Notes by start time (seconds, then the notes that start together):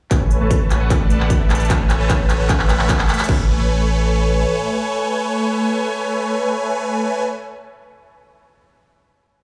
0.11 A1 A3 A4 B4 C#5 G#5, kick, clap, closed hi-hat
0.31 closed hi-hat
0.41 A3 A4 B4 C#5 A5
0.51 A3 A4 B4 C#5 A5, kick, closed hi-hat
0.70 A1 A3 A4 B4 C#5 G#5, clap, closed hi-hat
0.81 A3 A4 B4 C#5 F#5
0.90 A3 A4 B4 D5 F#5, kick, clap, closed hi-hat
1.00 A3 A4 B4 D5 A5
1.10 closed hi-hat
1.20 A3 A4 B4 D5 F#5, clap
1.30 kick, closed hi-hat
1.40 A3 A4 B4 D5 E5
1.50 A1 A3 A4 B4 D5 A5, clap, closed hi-hat
1.55 closed hi-hat
1.60 closed hi-hat
1.65 closed hi-hat
1.70 A3 A4 B4 G#5, kick, clap, closed hi-hat
1.90 clap, closed hi-hat
2.00 A3 A4 B4 C#5 A5
2.09 A3 A4 B4 C#5 A5, kick, clap, closed hi-hat
2.29 A1 A3 A4 B4 C#5 G#5, clap, closed hi-hat
2.39 A3 A4 B4 C#5 F#5
2.49 A3 A4 B4 E5 F#5, kick, clap, closed hi-hat
2.59 A3 A4 B4 C#5 E5 B5, clap
2.69 clap, closed hi-hat
2.79 A3 A4 B4 C#5 E5 F#5, clap
2.89 kick, clap, closed hi-hat
2.99 A3 A4 B4 C#5 E5 F#5, clap
3.09 A3 A4 B4 C#5 E5 B5, clap, closed hi-hat
3.14 closed hi-hat
3.19 clap, closed hi-hat
3.24 closed hi-hat
3.29 A1 A3 A4 B4 C#5 G#5, kick, crash